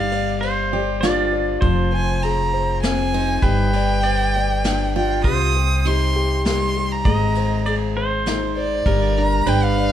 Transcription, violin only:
0, 0, Header, 1, 2, 480
1, 0, Start_track
1, 0, Tempo, 603015
1, 1291, Time_signature, 3, 2, 24, 8
1, 7896, End_track
2, 0, Start_track
2, 0, Title_t, "Violin"
2, 0, Program_c, 0, 40
2, 0, Note_on_c, 0, 77, 91
2, 466, Note_off_c, 0, 77, 0
2, 1535, Note_on_c, 0, 80, 84
2, 1769, Note_on_c, 0, 82, 87
2, 1780, Note_off_c, 0, 80, 0
2, 2244, Note_off_c, 0, 82, 0
2, 2249, Note_on_c, 0, 80, 96
2, 2731, Note_on_c, 0, 79, 100
2, 2743, Note_off_c, 0, 80, 0
2, 3935, Note_off_c, 0, 79, 0
2, 3945, Note_on_c, 0, 79, 88
2, 4164, Note_off_c, 0, 79, 0
2, 4176, Note_on_c, 0, 87, 108
2, 4668, Note_on_c, 0, 84, 97
2, 4680, Note_off_c, 0, 87, 0
2, 5145, Note_off_c, 0, 84, 0
2, 5152, Note_on_c, 0, 84, 89
2, 5508, Note_on_c, 0, 82, 88
2, 5520, Note_off_c, 0, 84, 0
2, 6224, Note_off_c, 0, 82, 0
2, 6821, Note_on_c, 0, 74, 92
2, 7303, Note_on_c, 0, 82, 93
2, 7315, Note_off_c, 0, 74, 0
2, 7547, Note_on_c, 0, 79, 97
2, 7558, Note_off_c, 0, 82, 0
2, 7669, Note_on_c, 0, 77, 100
2, 7681, Note_off_c, 0, 79, 0
2, 7896, Note_off_c, 0, 77, 0
2, 7896, End_track
0, 0, End_of_file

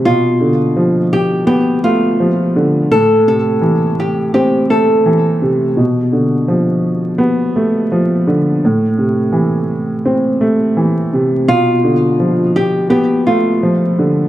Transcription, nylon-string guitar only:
0, 0, Header, 1, 2, 480
1, 0, Start_track
1, 0, Tempo, 714286
1, 37, Time_signature, 4, 2, 24, 8
1, 9600, End_track
2, 0, Start_track
2, 0, Title_t, "Nylon-string guitar"
2, 0, Program_c, 0, 24
2, 36, Note_on_c, 0, 65, 107
2, 729, Note_off_c, 0, 65, 0
2, 758, Note_on_c, 0, 67, 86
2, 974, Note_off_c, 0, 67, 0
2, 988, Note_on_c, 0, 67, 83
2, 1208, Note_off_c, 0, 67, 0
2, 1235, Note_on_c, 0, 65, 72
2, 1929, Note_off_c, 0, 65, 0
2, 1959, Note_on_c, 0, 69, 107
2, 2174, Note_off_c, 0, 69, 0
2, 2204, Note_on_c, 0, 69, 89
2, 2654, Note_off_c, 0, 69, 0
2, 2686, Note_on_c, 0, 67, 78
2, 2898, Note_off_c, 0, 67, 0
2, 2917, Note_on_c, 0, 67, 82
2, 3133, Note_off_c, 0, 67, 0
2, 3160, Note_on_c, 0, 69, 78
2, 3519, Note_off_c, 0, 69, 0
2, 7717, Note_on_c, 0, 65, 110
2, 8410, Note_off_c, 0, 65, 0
2, 8440, Note_on_c, 0, 67, 88
2, 8654, Note_off_c, 0, 67, 0
2, 8670, Note_on_c, 0, 67, 90
2, 8889, Note_off_c, 0, 67, 0
2, 8915, Note_on_c, 0, 65, 72
2, 9600, Note_off_c, 0, 65, 0
2, 9600, End_track
0, 0, End_of_file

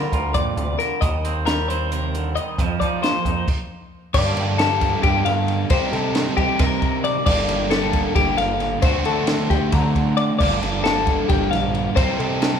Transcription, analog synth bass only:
0, 0, Header, 1, 2, 480
1, 0, Start_track
1, 0, Key_signature, -2, "minor"
1, 0, Tempo, 446761
1, 1096, Time_signature, 7, 3, 24, 8
1, 13534, End_track
2, 0, Start_track
2, 0, Title_t, "Analog synth bass"
2, 0, Program_c, 0, 38
2, 134, Note_on_c, 0, 38, 85
2, 374, Note_on_c, 0, 41, 98
2, 390, Note_off_c, 0, 38, 0
2, 584, Note_off_c, 0, 41, 0
2, 610, Note_on_c, 0, 38, 103
2, 822, Note_off_c, 0, 38, 0
2, 1095, Note_on_c, 0, 39, 110
2, 2566, Note_off_c, 0, 39, 0
2, 2774, Note_on_c, 0, 41, 120
2, 2986, Note_off_c, 0, 41, 0
2, 3018, Note_on_c, 0, 53, 86
2, 3438, Note_off_c, 0, 53, 0
2, 3491, Note_on_c, 0, 41, 86
2, 3705, Note_off_c, 0, 41, 0
2, 4451, Note_on_c, 0, 43, 119
2, 4664, Note_off_c, 0, 43, 0
2, 4697, Note_on_c, 0, 43, 85
2, 5325, Note_off_c, 0, 43, 0
2, 5414, Note_on_c, 0, 43, 106
2, 5625, Note_off_c, 0, 43, 0
2, 5656, Note_on_c, 0, 43, 109
2, 6075, Note_off_c, 0, 43, 0
2, 6128, Note_on_c, 0, 36, 105
2, 6340, Note_off_c, 0, 36, 0
2, 6369, Note_on_c, 0, 48, 91
2, 6789, Note_off_c, 0, 48, 0
2, 6851, Note_on_c, 0, 36, 92
2, 6957, Note_off_c, 0, 36, 0
2, 7084, Note_on_c, 0, 48, 116
2, 7715, Note_off_c, 0, 48, 0
2, 7809, Note_on_c, 0, 31, 116
2, 8019, Note_off_c, 0, 31, 0
2, 8050, Note_on_c, 0, 31, 85
2, 8678, Note_off_c, 0, 31, 0
2, 8763, Note_on_c, 0, 31, 99
2, 8975, Note_off_c, 0, 31, 0
2, 9003, Note_on_c, 0, 31, 108
2, 9425, Note_off_c, 0, 31, 0
2, 9485, Note_on_c, 0, 38, 108
2, 9696, Note_off_c, 0, 38, 0
2, 9729, Note_on_c, 0, 50, 88
2, 10148, Note_off_c, 0, 50, 0
2, 10212, Note_on_c, 0, 38, 94
2, 10315, Note_off_c, 0, 38, 0
2, 10450, Note_on_c, 0, 50, 113
2, 11078, Note_off_c, 0, 50, 0
2, 11180, Note_on_c, 0, 31, 119
2, 11385, Note_off_c, 0, 31, 0
2, 11413, Note_on_c, 0, 31, 89
2, 12041, Note_off_c, 0, 31, 0
2, 12141, Note_on_c, 0, 31, 108
2, 12346, Note_off_c, 0, 31, 0
2, 12368, Note_on_c, 0, 34, 108
2, 12789, Note_off_c, 0, 34, 0
2, 12857, Note_on_c, 0, 36, 115
2, 13065, Note_off_c, 0, 36, 0
2, 13103, Note_on_c, 0, 48, 84
2, 13518, Note_off_c, 0, 48, 0
2, 13534, End_track
0, 0, End_of_file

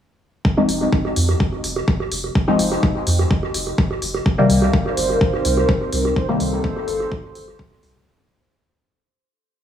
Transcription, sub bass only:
0, 0, Header, 1, 2, 480
1, 0, Start_track
1, 0, Tempo, 476190
1, 453, Time_signature, 4, 2, 24, 8
1, 9713, End_track
2, 0, Start_track
2, 0, Title_t, "Sub bass"
2, 0, Program_c, 0, 38
2, 692, Note_on_c, 0, 29, 98
2, 875, Note_off_c, 0, 29, 0
2, 1172, Note_on_c, 0, 41, 88
2, 1354, Note_off_c, 0, 41, 0
2, 1652, Note_on_c, 0, 29, 87
2, 1834, Note_off_c, 0, 29, 0
2, 2132, Note_on_c, 0, 29, 89
2, 2314, Note_off_c, 0, 29, 0
2, 2612, Note_on_c, 0, 29, 101
2, 2794, Note_off_c, 0, 29, 0
2, 3092, Note_on_c, 0, 41, 90
2, 3274, Note_off_c, 0, 41, 0
2, 3572, Note_on_c, 0, 29, 89
2, 3755, Note_off_c, 0, 29, 0
2, 4052, Note_on_c, 0, 29, 85
2, 4235, Note_off_c, 0, 29, 0
2, 4532, Note_on_c, 0, 36, 102
2, 4714, Note_off_c, 0, 36, 0
2, 5012, Note_on_c, 0, 31, 86
2, 5194, Note_off_c, 0, 31, 0
2, 5492, Note_on_c, 0, 36, 94
2, 5675, Note_off_c, 0, 36, 0
2, 5972, Note_on_c, 0, 36, 86
2, 6155, Note_off_c, 0, 36, 0
2, 6452, Note_on_c, 0, 36, 104
2, 6634, Note_off_c, 0, 36, 0
2, 6932, Note_on_c, 0, 31, 90
2, 7114, Note_off_c, 0, 31, 0
2, 7413, Note_on_c, 0, 31, 80
2, 7595, Note_off_c, 0, 31, 0
2, 7893, Note_on_c, 0, 36, 83
2, 8075, Note_off_c, 0, 36, 0
2, 9713, End_track
0, 0, End_of_file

